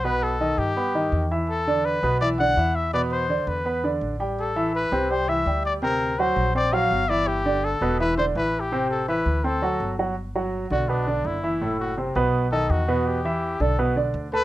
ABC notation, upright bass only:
X:1
M:4/4
L:1/8
Q:1/4=166
K:G
V:1 name="Upright bass" clef=bass
B,,,3 G,,3 E,,2- | E,,3 B,,,3 E,,2- | E,,3 E,,3 A,,,2- | A,,,3 C,,3 D,,2- |
D,,3 ^A,,,3 G,,,2- | G,,,3 E,,,3 A,,,2- | A,,,3 D,,3 G,,,2- | G,,,3 B,,,3 F,,,2- |
F,,,3 B,,,3 E,,2- | E,,3 B,,,3 D,,2 |]